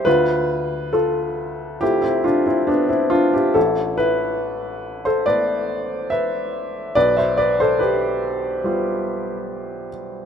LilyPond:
<<
  \new Staff \with { instrumentName = "Upright piano" } { \time 4/4 \key a \minor \tempo 4 = 71 <f' b'>4 <f' a'>4 <e' g'>16 <c' e'>16 <d' f'>16 <c' e'>16 <b d'>16 <c' e'>16 <d' f'>16 <e' g'>16 | <e' a'>8 <e' b'>4~ <e' b'>16 <a' c''>16 <b' d''>4 <b' e''>4 | <b' d''>16 <c'' e''>16 <b' d''>16 <a' c''>16 <g' b'>2~ <g' b'>8 r8 | }
  \new Staff \with { instrumentName = "Upright piano" } { \time 4/4 \key a \minor d,2 <a c' f'>2 | a,,2 <a b e'>2 | b,,2 <g b f'>2 | }
>>